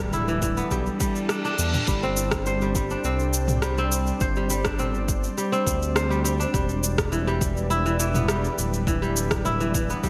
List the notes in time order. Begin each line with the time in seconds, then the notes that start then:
Already playing: D1 E3 G3 B3 D4 E4 A4 D5
0.12 E4, mid tom, cabasa
0.28 E3, cabasa
0.42 E3, kick, cabasa
0.57 B3, cabasa
0.71 B1 G3, kick, reverse cymbal, cabasa
0.86 cabasa
1.00 G3, kick, cabasa
1.16 cabasa
1.29 D4, cross-stick, cabasa
1.45 D4, cabasa
1.59 E2, cabasa
1.73 mid tom, cabasa
1.88 G1 G3 C4 C5 D5, kick, cabasa
2.03 C4, cabasa
2.17 cabasa
2.31 kick, cross-stick, cabasa
2.46 C5, cabasa
2.61 G3, cabasa
2.75 G3, kick, cabasa
2.90 D4, cabasa
3.04 C2 C4, cabasa
3.19 cabasa
3.33 cabasa
3.48 mid tom, cabasa
3.62 G3, cross-stick, cabasa
3.78 C4, cabasa
3.92 cabasa
4.07 cabasa
4.21 G1 C5, kick, cabasa
4.36 G3, cabasa
4.50 G3, cabasa
4.65 D4, kick, cross-stick, cabasa
4.78 C4, mid tom, cabasa
4.94 cabasa
5.08 kick, cabasa
5.24 cabasa
5.38 G3, cabasa
5.52 C4, cabasa
5.67 D2, kick, cabasa
5.83 cabasa
5.96 C5, cross-stick, cabasa
6.10 G3, cabasa
6.24 G3, cabasa
6.40 D4, cabasa
6.54 E1 G3 E4 B4, kick, cabasa
6.69 cabasa
6.83 cabasa
6.98 kick, cross-stick, cabasa
7.12 E3, cabasa
7.27 G3, cabasa
7.41 kick, cabasa
7.57 cabasa
7.70 E4, cabasa
7.86 E3, cabasa
7.99 E3, cabasa
8.14 B3, mid tom, cabasa
8.28 G3, cross-stick, cabasa
8.44 cabasa
8.58 D1, cabasa
8.74 cabasa
8.87 E3, kick, cabasa
9.02 G3, cabasa
9.16 cabasa
9.31 kick, cross-stick, cabasa
9.45 E4, mid tom, cabasa
9.60 E3, cabasa
9.74 E3, kick, cabasa
9.90 B3, cabasa
10.03 B1 G3, kick, cabasa